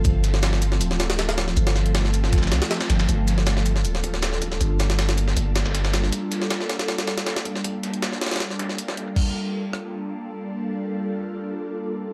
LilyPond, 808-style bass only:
\new Staff \with { instrumentName = "808-style bass" } { \clef bass \time 4/4 \key g \minor \tempo 4 = 158 g,,2 d,,2 | g,,2~ g,,8 c,8 r8 g,,8 | g,,2 d,,2 | g,,2 g,,2 |
r1 | r1 | r1 | r1 | }